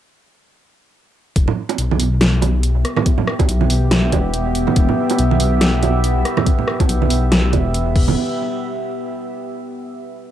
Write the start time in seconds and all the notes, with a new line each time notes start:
1.36 E1 B3 G4 E5, kick, closed hi-hat
1.48 low conga
1.69 closed hi-hat, high bongo
1.78 B1, closed hi-hat
1.91 high conga
2.00 B1, open hi-hat
2.21 snare, closed hi-hat
2.42 closed hi-hat, high bongo, high conga
2.63 closed hi-hat
2.85 cross-stick, closed hi-hat
2.97 cross-stick, high conga, low conga
3.06 kick, closed hi-hat
3.18 low conga
3.27 cross-stick
3.39 kick, closed hi-hat, high bongo
3.49 B1, closed hi-hat
3.61 high conga
3.70 B1, open hi-hat
3.91 snare, closed hi-hat
4.12 E1, kick, closed hi-hat, high bongo, high conga
4.34 closed hi-hat
4.55 E1, closed hi-hat
4.67 high conga, low conga
4.76 E1, kick, closed hi-hat
4.89 low conga
5.10 closed hi-hat, high bongo
5.19 B1, closed hi-hat
5.31 high conga
5.40 B1, open hi-hat
5.61 snare, closed hi-hat
5.83 closed hi-hat, high bongo, high conga
6.04 closed hi-hat
6.25 cross-stick, closed hi-hat
6.37 cross-stick, high conga, low conga
6.47 kick, closed hi-hat
6.58 low conga
6.68 cross-stick
6.80 kick, closed hi-hat, high bongo
6.89 B1, closed hi-hat
7.02 high conga
7.10 B1, open hi-hat
7.32 B1, snare, closed hi-hat
7.53 E1, kick, closed hi-hat, high bongo, high conga
7.74 closed hi-hat
7.95 E1, kick, crash
8.08 high conga, low conga